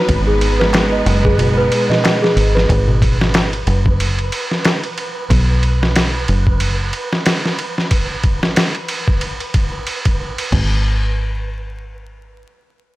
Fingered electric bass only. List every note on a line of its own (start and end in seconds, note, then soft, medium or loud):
0.08 1.03 G#1 medium
1.06 1.69 F#1 medium
2.36 2.66 G#1 medium
2.69 3.64 G#1 loud
3.67 4.29 F#1 loud
5.30 6.25 B1 loud
6.29 6.91 F#1 medium
10.52 12.44 G#1 loud